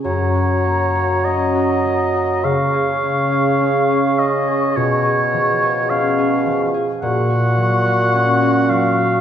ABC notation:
X:1
M:4/4
L:1/16
Q:1/4=52
K:F#
V:1 name="Flute"
a8 c'8- | c'6- c' z c'8 |]
V:2 name="Oboe"
c4 d4 e6 d2 | c4 e3 z f6 e2 |]
V:3 name="Clarinet"
F8 G8 | E6- E z F8 |]
V:4 name="Harp"
[F,,C] F A, F C F A, F C, G C G C G C G | B,, G E, G C G E, G A,, F F, F C F F, F |]
V:5 name="Bassoon" clef=bass
F,8 C,8 | B,,6- B,, z A,,8 |]